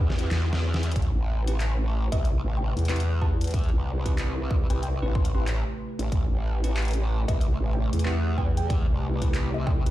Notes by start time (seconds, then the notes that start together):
Already playing: E2
0.10 snare
0.19 C4 E4 G4 B4, closed hi-hat
0.31 E2, snare, clap, closed hi-hat
0.53 snare
0.74 snare
0.83 closed hi-hat
0.92 closed hi-hat
0.96 A1 C3 A3 G4 B4, kick, closed hi-hat
1.02 closed hi-hat
1.15 A1
1.48 C4 E4 G4 B4, closed hi-hat
1.60 clap, closed hi-hat
2.12 C2 C4 E4 G4 B4 E5, kick, closed hi-hat
2.25 closed hi-hat
2.44 A1
2.57 G5
2.76 E2, closed hi-hat
2.79 closed hi-hat
2.85 closed hi-hat
2.89 C4 E4 G4 B4, clap, closed hi-hat
2.96 closed hi-hat
3.00 closed hi-hat
3.22 C4 E4 G4 B4 A5, kick
3.41 closed hi-hat
3.44 closed hi-hat
3.47 closed hi-hat
3.51 kick, closed hi-hat
3.54 closed hi-hat
3.59 closed hi-hat
3.64 closed hi-hat
3.69 closed hi-hat
3.73 C2
4.06 C4 E4 G4 B4, kick, closed hi-hat
4.18 clap, closed hi-hat
4.51 kick
4.70 C2 C4 E4 G4 B4 G5, closed hi-hat
4.83 G5, closed hi-hat
5.02 A1 C4 E4 G4 B4
5.15 C6, kick
5.25 closed hi-hat
5.34 A1 C4 E4 G4 B4 C6
5.47 clap, closed hi-hat
5.99 A1, closed hi-hat
6.12 A1, kick, closed hi-hat
6.31 A1
6.64 C4 E4 G4 B4, closed hi-hat
6.77 clap, closed hi-hat
6.79 closed hi-hat
6.82 closed hi-hat
6.85 closed hi-hat
6.88 closed hi-hat
6.91 closed hi-hat
6.93 closed hi-hat
7.28 C2 C4 E4 G4 B4 E5, kick, closed hi-hat
7.41 closed hi-hat
7.60 A1
7.73 G5
7.93 E2, closed hi-hat
7.99 closed hi-hat
8.05 C4 E4 G4 B4, clap
8.38 C4 E4 G4 B4 G5, kick
8.57 G5, closed hi-hat
8.70 kick, closed hi-hat
8.90 C2
9.22 C4 E4 G4 B4, kick, closed hi-hat
9.34 clap, closed hi-hat
9.54 E5
9.67 G5, kick
9.86 C2 C4 E4 G4 B4, closed hi-hat